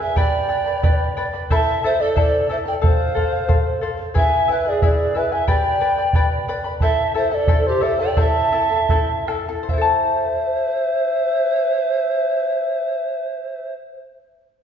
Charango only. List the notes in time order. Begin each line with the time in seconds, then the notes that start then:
0.00 E4 B4 G#5
0.16 G4 B4 D5 G5 B5
0.49 B4 D5 G5 B5
0.66 B4 D5 B5
0.83 G4 B4 D5 G5 B5
1.17 B4 D5 G5 B5
1.33 B4 D5 B5
1.50 E4 A4 C5 E5 A5
1.83 E4 A4 E5 A5
2.00 E4 A4 A5
2.16 E4 A4 C5 E5 A5
2.49 E4 A4 E5 A5
2.65 E4 A4 A5
2.81 A4 C5 F5
3.15 A4 C5 F5
3.32 C5 F5
3.48 A4 C5 F5
3.81 A4 C5 F5
3.97 C5 F5
4.14 E4 G#4 B4 E5 G#5
4.48 E4 B4 E5 G#5
4.65 E4 B4 G#5
4.82 E4 G#4 B4 E5 G#5
5.15 E4 B4 E5 G#5
5.32 E4 B4 G#5
5.47 G4 B4 D5 G5 B5
5.80 B4 D5 G5 B5
5.98 B4 D5 B5
6.15 G4 B4 D5 G5 B5
6.48 B4 D5 G5 B5
6.64 B4 D5 B5
6.82 E4 A4 C5 E5 A5
7.14 E4 A4 E5 A5
7.31 E4 A4 A5
7.48 E4 A4 C5 E5 A5
7.81 E4 A4 E5 A5
7.99 E4 A4 A5
8.17 E4 A4 C5 E5 A5
8.52 E4 A4 E5 A5
8.70 E4 A4 A5
8.90 E4 A4 C5 E5 A5
9.27 E4 A4 E5 A5
9.48 E4 A4 A5
9.63 C5
9.69 E5
9.73 E4
9.78 A4 A5